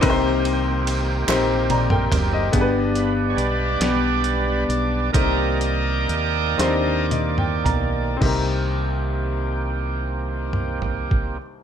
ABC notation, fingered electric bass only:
X:1
M:6/8
L:1/8
Q:3/8=44
K:Cm
V:1 name="Fingered electric bass" clef=bass
C,,3 B,,,2 ^F,,, | G,,,2 =B,,, B,,,2 B,,, | C,,2 E,, E,,2 =B,,, | C,,6 |]